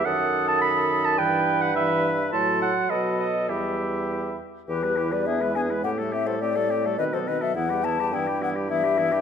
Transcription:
X:1
M:2/4
L:1/16
Q:1/4=105
K:Em
V:1 name="Flute"
^d'8 | b4 b4 | c'4 b4 | b6 z2 |
B3 d e2 ^g2 | f2 e c d4 | ^d c d e f2 a2 | g2 f2 e4 |]
V:2 name="Oboe"
A8 | B4 B4 | A4 A4 | G6 z2 |
G B G B ^G B G B | G A G A G A G A | B A B A E G E G | E G E G E G E G |]
V:3 name="Clarinet"
f3 a b3 a | g3 f e3 z | a2 f2 ^d2 d2 | e6 z2 |
E G E G D E D E | C A, C A, C A, C A, | C B, C B, B, E B, E | B, E B, E B, E B, E |]
V:4 name="French horn" clef=bass
^D,8 | E,4 E,4 | F,4 F,4 | G,6 z2 |
E, G, E, G, B, ^G, B, G, | A, G, A, G, A, G, A, G, | ^D, F, D, F, E, G, E, G, | E, G, E, G, E, G, E, G, |]
V:5 name="Bassoon" clef=bass
F,,8 | G,,8 | A,,4 B,,4 | E,,6 z2 |
E,,8 | A,,8 | B,,4 E,,4 | G,,8 |]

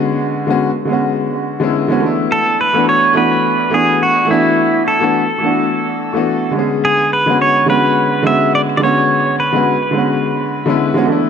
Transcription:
X:1
M:4/4
L:1/16
Q:"Swing 16ths" 1/4=106
K:Dlyd
V:1 name="Pedal steel guitar"
z16 | A2 B2 c2 B4 G2 F2 E2- | E2 A12 z2 | G2 B2 c2 B4 e2 d3/2 d/2 c2- |
c2 B12 z2 |]
V:2 name="Grand piano"
[D,G,B,CF]3 [D,G,B,CF] z2 [D,G,B,CF]4- [D,G,B,CF] [D,G,B,CE]2 [D,G,B,CF] [E,A,B,DE]2- | [E,A,B,DE]3 [E,A,B,DF]3 [E,A,B,DF]4 [E,A,B,DF]4 [E,A,B,DF]2- | [E,A,B,DF]3 [E,A,B,DF] z2 [E,A,B,DF]4- [E,A,B,DF] [E,A,B,DF]3 [D,G,B,CG]2- | [D,G,B,CG]3 [D,G,B,CF]3 [D,G,B,CF]4 [D,G,B,CF]4 [D,G,B,CF]2- |
[D,G,B,CF]3 [D,G,B,CF] z2 [D,G,B,CF]4- [D,G,B,CF] [D,G,B,CE]2 [D,G,B,CF] [E,A,B,DE]2 |]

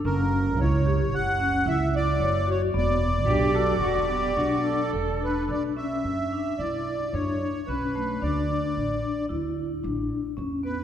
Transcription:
X:1
M:5/4
L:1/8
Q:1/4=111
K:Bm
V:1 name="Accordion"
^A2 c2 f2 e d2 c | d8 z B | d e3 d2 c2 B2 | d4 z4 z B |]
V:2 name="Cello"
z8 z2 | z2 G A F G F A3 | z8 z2 | z8 z2 |]
V:3 name="Vibraphone"
C2 E G2 C E2 c F | B,2 D F2 B, D2 A D | D C2 D E2 D2 C A, | D D2 D E2 D2 C B, |]
V:4 name="Upright bass" clef=bass
F,,,2 C,,2 F,,,2 C,,2 F,,,2 | E,,,2 B,,,2 E,,,2 B,,,2 E,,,2 | B,,,2 F,, z B,,,2 F,, z B,,,2 | D,,2 A,,, z D,,2 A,,, z E,,2 |]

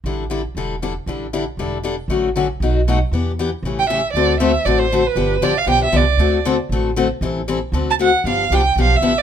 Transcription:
X:1
M:4/4
L:1/8
Q:"Swing" 1/4=234
K:Amix
V:1 name="Violin"
z8 | z8 | z8 | z4 z g e2 |
[K:G] d2 e2 d c2 B- | B2 d =f g e d2- | d2 z6 | z4 z a f2 |
=f2 g2 f e2 d |]
V:2 name="Steel-string acoustic guitar"
[D,G,DEA] z [D,G,DEA] z [D,G,DEA] z [D,G,DEA] z | [D,G,DEA] z [D,G,DEA] z [D,G,DEA] z [D,G,DEA] z | [D,F,A,CF] z [D,F,A,CF] z [B,,F,A,^DF] z [B,,F,A,DF] z | [E,B,DG] z [E,B,DG] z [C,E,A,CG] z [C,E,A,CG] z |
[K:G] [D,A,CFA] z [D,A,CFA] z [D,A,CFA] z [D,A,CFA] z | [D,=F,B,DG] z [D,F,B,DG] z [D,F,B,DG] z [D,F,B,DG] z | [D,A,CFA] z [D,A,CFA] z [D,A,CFA] z [D,A,CFA] z | [E,G,CEA] z [E,G,CEA] z [D,A,CFA] z [D,A,CFA] z |
[D,=F,B,DG] z [D,F,B,DG] z [D,F,B,DG] z [D,F,B,DG] z |]
V:3 name="Upright bass" clef=bass
A,,,4 E,,,4 | A,,,4 E,,,4 | A,,,4 B,,,4 | E,,4 A,,,4 |
[K:G] D,,4 A,,,4 | G,,,2 A,,,2 B,,,2 C,,2 | D,,4 A,,,4 | A,,,4 D,,4 |
G,,,2 C,,2 B,,,2 A,,,2 |]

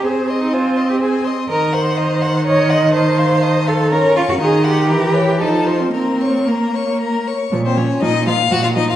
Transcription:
X:1
M:3/4
L:1/16
Q:1/4=122
K:Ab
V:1 name="Violin"
a2 c'2 a2 c'2 a2 c'2 | [K:Bbm] b2 c'2 b2 c'2 b2 c'2 | =a2 c'2 a2 c'2 b2 d'2 | b2 c'2 b2 =g2 =a2 c'2 |
b2 d'2 b2 d'2 b2 d'2 | z c d2 e2 f2 g f e f |]
V:2 name="Violin"
c2 e2 c2 e2 c2 e2 | [K:Bbm] e2 g2 e2 g2 e2 g2 | e2 f2 e2 f2 d2 f2 | e2 g2 B2 ^c2 =A2 =c2 |
B2 d2 B2 d2 B2 d2 | z C D2 E2 F2 G F E F |]
V:3 name="Cello"
A3 E F3 G A2 z2 | [K:Bbm] B2 c6 d2 e2 | c6 =A2 B2 F G | A2 =G6 E3 C |
C4 B,4 z4 | B,,4 B,,4 B,,4 |]
V:4 name="Viola" clef=bass
C12 | [K:Bbm] E,12- | E,8 D4 | E,4 =E,4 F,4 |
B,8- B,2 z2 | F,2 F,2 F,2 F,2 F,2 F,2 |]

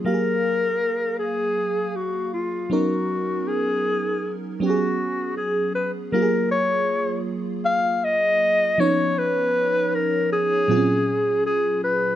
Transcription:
X:1
M:4/4
L:1/8
Q:"Swing 16ths" 1/4=79
K:F#
V:1 name="Clarinet"
A3 G2 F E F- | F G2 z F2 G B | A c2 z e d2 c | B2 A G3 G B |]
V:2 name="FM electric piano"
[F,A,=G^Ge]6- [F,A,=G^Ge] [F,B,CDA]- | [F,B,CDA]4 [F,B,C=G^G]4 | [F,A,E=G^G]6- [F,A,E=G^G] [E,B,CDc]- | [E,B,CDc]4 [A,,F,^B,CEG]4 |]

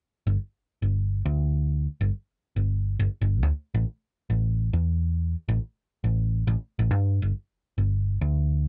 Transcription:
X:1
M:4/4
L:1/16
Q:"Swing 16ths" 1/4=138
K:Aphr
V:1 name="Picked electric bass" clef=bass
z2 G,,, z4 G,,,4 D,,4- D,,- | D,, z G,,, z4 G,,,4 G,,, z G,,,2 D,, | z2 A,,, z4 A,,,4 E,,4- E,,- | E,, z A,,, z4 A,,,4 A,,, z2 A,,, G,,- |
G,,2 G,,, z4 G,,,4 D,,4- D,, |]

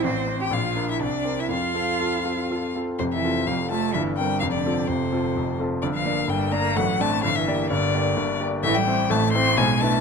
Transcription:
X:1
M:3/4
L:1/16
Q:1/4=127
K:F
V:1 name="Violin"
c3 g f3 e d3 e | f8- f2 z2 | c e3 f2 a2 e2 g2 | f d3 c6 z2 |
d f3 g2 b2 ^f2 a2 | f e3 d6 z2 | e g3 a2 c'2 ^g2 a2 |]
V:2 name="Grand piano"
A,,,2 [Cc]2 B,,,2 [DB]2 C,,2 [CB]2 | F,,2 [CA]2 [FA]2 [CA]2 [FA]2 [CA]2 | [F,,,F,,]2 [CFA]2 [F,,,F,,]2 [CFA]2 [G,,,G,,]2 [CB]2 | [F,,,F,,]2 [CFA]2 [F,,,F,,]2 [CFA]2 [F,,,F,,]2 [CFA]2 |
[G,,,G,,]2 [B,Dd]2 [G,,,G,,]2 [B,Dd]2 [A,,,A,,]2 [CDd]2 | [G,,,G,,]2 [B,Gd]2 [G,,,G,,]2 [B,Gd]2 [G,,,G,,]2 [B,Gd]2 | [A,,,A,,]2 [CEc]2 [A,,,A,,]2 [CEc]2 [=B,,,=B,,]2 [DE=B]2 |]
V:3 name="Cello" clef=bass
C3 G F3 E D3 E | F8- F2 z2 | C, E,3 F,2 A,2 E,2 G,2 | F, D,3 C,6 z2 |
D, F,3 G,2 B,2 ^F,2 A,2 | F, E,3 D,6 z2 | E, G,3 A,2 C2 ^G,2 A,2 |]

